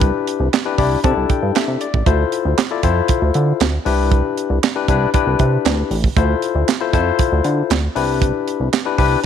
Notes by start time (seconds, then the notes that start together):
Already playing: C2 D4 E4 G4 B4
0.01 kick, closed hi-hat
0.27 closed hi-hat
0.40 C2
0.53 snare, clap, closed hi-hat
0.65 D4 E4 G4 B4
0.78 C2 D4 E4 G4 D5 B5, kick, open hi-hat
1.04 C3 D4 D#4 G4 A4 A5, kick, closed hi-hat
1.10 E4
1.17 C2
1.29 G5, kick, closed hi-hat
1.43 G2
1.55 E5, snare, clap, closed hi-hat
1.68 C3
1.81 D5, closed hi-hat
1.94 A1, kick
2.06 D2 E4 F4 A4 C5, kick, closed hi-hat
2.32 closed hi-hat
2.45 D2
2.58 snare, clap, closed hi-hat
2.71 E4 F4 A4 D5
2.83 F2 E4 F4 A4 C5, kick, closed hi-hat
3.08 kick, closed hi-hat
3.22 D2
3.34 D3, closed hi-hat
3.60 D2, snare, clap, closed hi-hat
3.85 C2 D4 E4 G4 B4, open hi-hat
4.12 kick, closed hi-hat
4.37 closed hi-hat
4.50 C2
4.63 snare, clap, closed hi-hat
4.75 D4 E4 G4 B4
4.88 C2 D4 E4 G4 B4, kick, closed hi-hat
5.14 D4 E4 G4 B4, kick, closed hi-hat
5.27 C2
5.39 C3, kick, closed hi-hat
5.65 D2, snare, clap, closed hi-hat
5.91 A1, open hi-hat
6.04 kick
6.16 D2 E4 F4 A4 C5, kick, closed hi-hat
6.42 closed hi-hat
6.55 D2
6.68 snare, clap, closed hi-hat
6.80 E4 F4 A4 C5
6.93 F2 E4 F4 A4 C5, kick, closed hi-hat
7.19 kick, closed hi-hat
7.32 D2
7.44 D3, closed hi-hat
7.70 D2, snare, clap, closed hi-hat
7.95 C2 D4 E4 G4 B4, open hi-hat
8.22 kick, closed hi-hat
8.48 closed hi-hat
8.60 C2
8.73 snare, clap, closed hi-hat
8.85 D4 E4 G4 B4
8.98 C2 D4 E4 G4 B4, kick, open hi-hat